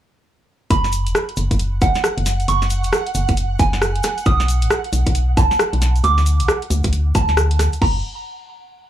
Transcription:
0.70 1.08 F#1 medium
0.70 7.83 F#5 medium
0.70 0.91 B5 loud
0.70 kick loud
0.70 closed hi-hat medium
0.70 shaker medium
0.84 snare soft
0.84 shaker soft
0.92 open hi-hat loud
0.92 shaker medium
1.06 1.13 E1 loud
1.06 closed hi-hat medium
1.06 shaker soft
1.15 cross-stick loud
1.15 shaker medium
1.29 closed hi-hat soft
1.37 1.48 F#1 medium
1.37 open hi-hat loud
1.37 shaker medium
1.51 1.79 F#1 loud
1.51 kick medium
1.51 closed hi-hat medium
1.51 shaker soft
1.59 closed hi-hat medium
1.59 shaker medium
1.82 1.93 F#1 medium
1.82 2.42 F#5 medium
1.82 kick loud
1.82 open hi-hat loud
1.82 shaker medium
1.95 snare soft
1.95 shaker soft
2.04 cross-stick loud
2.04 shaker medium
2.18 2.45 F#1 medium
2.18 closed hi-hat medium
2.26 snare soft
2.26 open hi-hat loud
2.26 shaker loud
2.40 closed hi-hat soft
2.40 shaker soft
2.48 2.86 F#1 loud
2.48 2.69 C#6 loud
2.48 closed hi-hat medium
2.48 shaker medium
2.62 snare soft
2.62 shaker soft
2.70 open hi-hat loud
2.70 shaker medium
2.84 2.91 E1 medium
2.84 closed hi-hat medium
2.84 shaker soft
2.93 cross-stick loud
2.93 shaker medium
3.07 closed hi-hat soft
3.15 3.26 F#1 medium
3.15 open hi-hat loud
3.15 shaker loud
3.28 3.57 F#1 loud
3.28 kick medium
3.28 closed hi-hat medium
3.28 shaker soft
3.37 closed hi-hat medium
3.37 shaker medium
3.59 4.01 F#1 loud
3.59 4.19 G#5 loud
3.59 kick loud
3.59 open hi-hat loud
3.59 shaker medium
3.73 snare soft
3.73 shaker soft
3.82 cross-stick loud
3.82 shaker medium
3.96 closed hi-hat medium
4.03 cross-stick medium
4.03 snare soft
4.03 open hi-hat loud
4.03 shaker loud
4.18 closed hi-hat soft
4.18 shaker soft
4.26 4.63 B1 medium
4.26 4.47 D#6 loud
4.26 kick loud
4.26 closed hi-hat medium
4.26 shaker medium
4.40 snare soft
4.40 shaker soft
4.48 open hi-hat loud
4.48 shaker medium
4.62 4.69 A1 loud
4.62 closed hi-hat medium
4.62 shaker soft
4.71 cross-stick loud
4.71 shaker medium
4.84 closed hi-hat soft
4.93 5.04 B1 medium
4.93 open hi-hat loud
4.93 shaker medium
5.07 5.34 B1 loud
5.07 kick medium
5.07 closed hi-hat medium
5.07 shaker soft
5.15 closed hi-hat medium
5.15 shaker medium
5.37 5.48 B1 loud
5.37 5.97 A5 loud
5.37 kick loud
5.37 open hi-hat loud
5.37 shaker loud
5.51 snare soft
5.51 shaker soft
5.59 cross-stick loud
5.59 shaker medium
5.73 6.01 B1 medium
5.73 closed hi-hat medium
5.82 snare soft
5.82 open hi-hat loud
5.82 shaker loud
5.96 closed hi-hat soft
5.96 shaker soft
6.04 6.41 D2 loud
6.04 6.25 D6 loud
6.04 closed hi-hat medium
6.04 shaker soft
6.18 snare soft
6.18 shaker soft
6.26 open hi-hat loud
6.26 shaker loud
6.40 6.47 B1 loud
6.40 closed hi-hat medium
6.40 shaker soft
6.48 cross-stick loud
6.48 shaker medium
6.62 closed hi-hat soft
6.70 6.81 D2 loud
6.70 open hi-hat loud
6.70 shaker loud
6.84 7.12 D2 loud
6.84 kick medium
6.84 closed hi-hat medium
6.84 shaker soft
6.93 closed hi-hat medium
6.93 shaker medium
7.15 7.69 D2 loud
7.15 7.75 A5 loud
7.15 kick loud
7.15 open hi-hat loud
7.15 shaker loud
7.28 snare soft
7.28 shaker soft
7.37 cross-stick loud
7.37 shaker medium
7.51 closed hi-hat medium
7.59 cross-stick medium
7.59 snare soft
7.59 open hi-hat loud
7.59 shaker loud
7.73 closed hi-hat soft
7.73 shaker soft
7.82 8.02 F#1 loud
7.82 7.99 A#5 loud
7.82 kick loud
7.82 crash medium

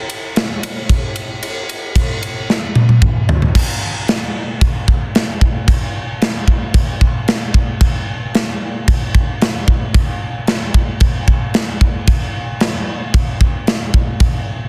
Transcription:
0.10 ride medium
0.36 snare loud
0.36 ride medium
0.63 ride medium
0.89 kick medium
0.89 ride loud
1.16 ride medium
1.43 ride loud
1.69 ride medium
1.96 kick medium
1.96 ride loud
2.23 ride medium
2.50 snare medium
2.75 high tom medium
2.89 high tom medium
3.02 kick medium
3.02 mid tom medium
3.29 floor tom loud
3.42 floor tom medium
3.55 kick loud
3.55 crash loud
3.55 crash medium
4.08 snare loud
4.08 crash medium
4.61 kick loud
4.61 crash soft
4.88 kick medium
5.15 snare loud
5.15 crash medium
5.41 kick medium
5.68 kick loud
5.68 crash medium
6.21 snare loud
6.21 crash medium
6.48 kick medium
6.74 kick loud
6.74 crash medium
7.01 kick medium
7.28 snare loud
7.28 crash medium
7.54 kick medium
7.81 kick loud
7.81 crash medium
8.34 snare loud
8.34 crash medium
8.88 kick loud
8.88 crash medium
9.15 kick medium
9.41 snare loud
9.41 crash medium
9.68 kick medium
9.94 kick loud
9.94 crash medium
10.47 snare loud
10.47 crash medium
10.74 kick medium
11.00 kick loud
11.00 crash medium
11.28 kick medium
11.54 snare loud
11.54 crash medium
11.81 kick medium
12.07 kick loud
12.07 crash medium
12.60 snare loud
12.60 crash medium
13.14 kick loud
13.14 crash medium
13.41 kick medium
13.67 snare loud
13.67 crash medium
13.94 kick medium
14.20 kick loud
14.20 crash medium

